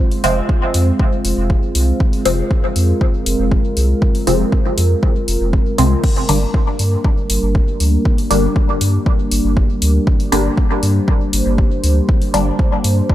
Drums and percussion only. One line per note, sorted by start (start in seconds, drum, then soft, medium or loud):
0.11 open hi-hat soft
0.24 open hi-hat medium
0.49 kick loud
0.74 open hi-hat medium
0.99 kick loud
1.25 open hi-hat medium
1.50 kick loud
1.75 open hi-hat medium
2.00 kick loud
2.13 open hi-hat soft
2.25 open hi-hat medium
2.51 kick loud
2.76 open hi-hat medium
3.01 kick loud
3.26 open hi-hat medium
3.51 kick loud
3.77 open hi-hat medium
4.02 kick loud
4.15 open hi-hat soft
4.27 open hi-hat medium
4.52 kick loud
4.78 open hi-hat medium
5.03 kick loud
5.28 open hi-hat medium
5.53 kick loud
5.78 open hi-hat medium
6.04 kick loud
6.04 crash medium
6.16 open hi-hat soft
6.29 open hi-hat medium
6.54 kick loud
6.79 open hi-hat medium
7.04 kick loud
7.30 open hi-hat medium
7.55 kick loud
7.80 open hi-hat medium
8.05 kick loud
8.18 open hi-hat soft
8.31 open hi-hat medium
8.56 kick loud
8.81 open hi-hat medium
9.06 kick loud
9.31 open hi-hat medium
9.57 kick loud
9.82 open hi-hat medium
10.07 kick loud
10.20 open hi-hat soft
10.32 open hi-hat medium
10.57 kick loud
10.83 open hi-hat medium
11.08 kick loud
11.33 open hi-hat medium
11.58 kick loud
11.84 open hi-hat medium
12.09 kick loud
12.22 open hi-hat soft
12.34 open hi-hat medium
12.59 kick loud
12.84 open hi-hat medium
13.10 kick loud